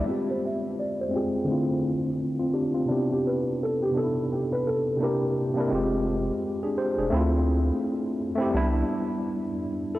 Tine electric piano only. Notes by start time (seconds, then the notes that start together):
0.04 G#3 C4
0.08 F4 G4
1.09 G#3 C4
1.14 F4 G5
1.44 D3 A3 C4
1.50 E4 F4
2.39 C4 F4
2.54 D4 G4
2.74 C4 F4
2.85 C3 B3 D4
2.90 E4 G4
3.91 C3 B3 D4
3.96 D#4 A4
4.03 E4
4.97 C3 A#3 D4
5.02 E4 G4
5.53 C3 A#3 D4
5.58 E4 A#4
5.68 G#3 C4
5.72 F4 G4
6.63 D4 G#4
6.78 G4 C5
6.98 D4 G#4
7.10 A3 C4
7.14 E4 F4
8.36 A3 C4
8.40 E4 G4
8.50 G3 B3
8.55 D4 E4
9.95 E4 A4